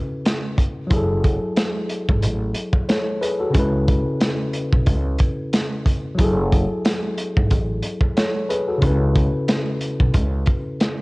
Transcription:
0.00 0.85 C#3 medium
0.00 0.86 C#4 medium
0.00 0.88 E4 medium
0.00 0.89 B4 medium
0.25 snare loud
0.25 closed hi-hat loud
0.58 kick loud
0.58 closed hi-hat medium
0.87 1.35 F#1 loud
0.87 3.49 F#3 medium
0.87 3.50 E4 medium
0.87 kick loud
0.87 closed hi-hat medium
0.93 2.86 G#4 medium
0.93 2.88 A4 medium
1.24 kick loud
1.24 closed hi-hat medium
1.57 snare loud
1.57 closed hi-hat loud
1.89 closed hi-hat medium
2.09 2.22 G#1 loud
2.09 kick loud
2.22 2.52 A1 loud
2.22 closed hi-hat medium
2.54 closed hi-hat medium
2.73 kick loud
2.89 3.20 A4 medium
2.89 3.20 C#5 medium
2.89 snare loud
2.89 closed hi-hat loud
3.21 3.39 G#4 medium
3.21 3.39 B4 medium
3.21 closed hi-hat medium
3.40 3.71 F#4 medium
3.40 3.71 A4 medium
3.50 6.12 C#3 medium
3.50 6.14 C#4 medium
3.54 3.99 C#2 loud
3.54 6.15 E4 medium
3.54 kick loud
3.54 closed hi-hat medium
3.59 6.17 B4 medium
3.88 kick loud
3.88 closed hi-hat medium
4.21 snare loud
4.21 closed hi-hat loud
4.53 closed hi-hat medium
4.73 4.85 B1 medium
4.73 kick loud
4.86 5.16 C#2 medium
4.86 kick medium
4.86 closed hi-hat medium
5.18 kick loud
5.18 closed hi-hat medium
5.53 snare loud
5.53 closed hi-hat loud
5.86 kick loud
5.86 closed hi-hat medium
6.15 8.76 F#3 medium
6.15 8.78 E4 medium
6.15 kick loud
6.15 closed hi-hat medium
6.19 6.63 F#1 loud
6.19 8.14 G#4 medium
6.24 8.15 A4 medium
6.52 kick medium
6.52 closed hi-hat medium
6.85 snare loud
6.85 closed hi-hat loud
7.17 closed hi-hat medium
7.37 7.49 G#1 medium
7.37 kick loud
7.50 7.79 A1 loud
7.50 kick medium
7.50 closed hi-hat medium
7.82 closed hi-hat medium
8.01 kick medium
8.17 8.48 A4 medium
8.17 8.48 C#5 medium
8.17 snare loud
8.17 closed hi-hat loud
8.49 8.67 G#4 medium
8.49 8.66 B4 medium
8.49 closed hi-hat medium
8.68 8.99 F#4 medium
8.68 8.99 A4 medium
8.78 11.02 C#3 medium
8.78 11.02 C#4 medium
8.82 9.27 C#2 loud
8.82 11.02 E4 medium
8.82 kick loud
8.82 closed hi-hat medium
8.87 11.02 B4 medium
9.16 kick loud
9.16 closed hi-hat medium
9.48 snare loud
9.48 closed hi-hat loud
9.81 closed hi-hat medium
10.00 10.13 B1 medium
10.00 kick loud
10.14 10.43 C#2 medium
10.14 kick medium
10.14 closed hi-hat medium
10.46 kick loud
10.46 closed hi-hat medium
10.80 snare loud
10.80 closed hi-hat loud

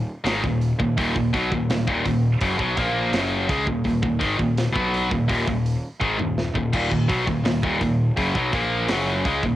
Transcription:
0.24 0.42 G#1 loud
0.24 0.42 G#2 medium
0.24 0.42 D#3 loud
0.24 snare loud
0.24 open hi-hat medium
0.42 0.77 D#1 medium
0.42 0.72 D#2 medium
0.42 0.72 A#2 medium
0.42 kick loud
0.61 open hi-hat medium
0.79 0.96 D#1 medium
0.79 0.96 D#2 medium
0.79 0.97 A#2 medium
0.79 kick medium
0.97 1.14 D#1 loud
0.97 1.14 D#2 medium
0.97 1.14 A#2 loud
0.97 kick loud
0.97 open hi-hat medium
1.15 1.33 D#1 medium
1.15 1.33 D#2 medium
1.15 1.33 A#2 medium
1.15 kick medium
1.33 1.50 B1 loud
1.33 1.50 B2 loud
1.33 1.50 F#3 loud
1.33 kick loud
1.33 open hi-hat medium
1.51 1.68 D#1 medium
1.51 1.69 D#2 medium
1.51 1.70 A#2 medium
1.51 kick medium
1.70 1.86 D#1 medium
1.70 1.86 D#2 medium
1.70 1.87 A#2 medium
1.70 snare loud
1.70 open hi-hat medium
1.87 2.04 D#1 medium
1.87 2.04 D#2 medium
1.87 2.05 A#2 medium
1.87 kick loud
2.05 2.39 D#1 medium
2.05 2.34 D#2 medium
2.05 2.34 A#2 medium
2.05 kick medium
2.05 open hi-hat medium
2.41 2.58 F#1 medium
2.41 2.58 F#2 medium
2.41 2.58 C#3 loud
2.41 kick loud
2.41 open hi-hat medium
2.58 2.76 B1 medium
2.58 2.75 B2 loud
2.58 2.76 F#3 loud
2.58 kick loud
2.76 3.11 A#1 medium
2.76 3.12 A#2 medium
2.76 3.12 F3 medium
2.76 3.12 A#3 loud
2.76 kick loud
2.76 open hi-hat medium
3.12 3.46 F#1 loud
3.12 3.48 F#2 loud
3.12 3.47 C#3 loud
3.12 3.48 F#3 loud
3.12 snare loud
3.12 open hi-hat medium
3.48 3.66 C#2 medium
3.48 3.65 C#3 medium
3.48 3.66 G#3 loud
3.48 kick loud
3.48 open hi-hat medium
3.66 3.84 D#1 medium
3.66 3.84 D#2 medium
3.66 3.84 A#2 medium
3.66 kick medium
3.84 4.02 D#1 medium
3.84 4.01 D#2 medium
3.84 4.01 A#2 medium
3.84 kick medium
3.84 open hi-hat medium
4.02 4.19 D#1 medium
4.02 4.21 D#2 medium
4.02 4.19 A#2 medium
4.02 kick loud
4.19 4.38 G#1 medium
4.19 4.37 G#2 medium
4.19 4.37 D#3 loud
4.19 kick loud
4.19 open hi-hat medium
4.37 4.72 D#1 medium
4.37 4.67 D#2 medium
4.37 4.67 A#2 medium
4.37 kick medium
4.58 snare loud
4.58 open hi-hat medium
4.73 5.08 B1 medium
4.73 5.09 B2 medium
4.73 5.09 F#3 medium
4.73 5.09 B3 loud
4.73 kick loud
4.94 open hi-hat medium
5.11 5.28 D#1 medium
5.11 5.27 D#2 medium
5.11 5.27 A#2 medium
5.11 kick medium
5.28 5.46 D#1 loud
5.28 5.45 D#2 medium
5.28 5.45 A#2 loud
5.28 kick loud
5.28 open hi-hat medium
5.47 5.81 D#1 medium
5.47 5.76 D#2 medium
5.47 5.76 A#2 medium
5.47 kick medium
5.66 open hi-hat medium
6.01 6.18 G#1 medium
6.01 6.17 G#2 medium
6.01 6.18 D#3 loud
6.01 kick medium
6.18 6.53 D#1 medium
6.18 6.47 D#2 medium
6.18 6.48 A#2 medium
6.18 mid tom medium
6.38 snare medium
6.55 6.72 D#1 medium
6.55 6.72 D#2 medium
6.55 6.72 A#2 medium
6.55 kick medium
6.73 6.90 D#1 medium
6.73 6.90 D#2 medium
6.73 6.90 A#2 loud
6.73 kick loud
6.73 crash medium
6.91 7.08 D#1 medium
6.91 7.09 D#2 medium
6.91 7.08 A#2 medium
6.91 kick medium
7.08 7.26 B1 medium
7.08 7.25 B2 medium
7.08 7.26 F#3 loud
7.08 kick loud
7.08 open hi-hat medium
7.26 7.43 D#1 medium
7.26 7.44 D#2 medium
7.26 7.45 A#2 medium
7.26 kick medium
7.45 7.61 D#1 medium
7.45 7.62 D#2 medium
7.45 7.63 A#2 medium
7.45 snare loud
7.45 open hi-hat medium
7.63 7.79 D#1 medium
7.63 7.80 D#2 medium
7.63 7.81 A#2 medium
7.63 kick loud
7.81 8.14 D#1 medium
7.81 8.10 D#2 medium
7.81 8.10 A#2 medium
7.81 kick medium
7.81 open hi-hat medium
8.17 8.33 F#1 medium
8.17 8.33 F#2 medium
8.17 8.34 C#3 loud
8.17 kick loud
8.17 open hi-hat medium
8.35 8.51 B1 loud
8.35 8.51 B2 medium
8.35 8.52 F#3 loud
8.35 kick loud
8.53 8.86 A#1 loud
8.53 8.88 A#2 medium
8.53 8.88 F3 medium
8.53 8.89 A#3 medium
8.53 kick loud
8.53 open hi-hat medium
8.88 9.23 F#1 loud
8.88 9.24 F#2 medium
8.88 9.24 C#3 medium
8.88 9.25 F#3 loud
8.88 snare loud
8.88 open hi-hat medium
9.24 9.41 C#2 medium
9.24 9.42 C#3 loud
9.24 9.42 G#3 loud
9.24 kick loud
9.24 open hi-hat medium
9.43 9.56 D#1 medium
9.43 9.56 D#2 medium
9.43 9.56 A#2 medium
9.43 kick medium

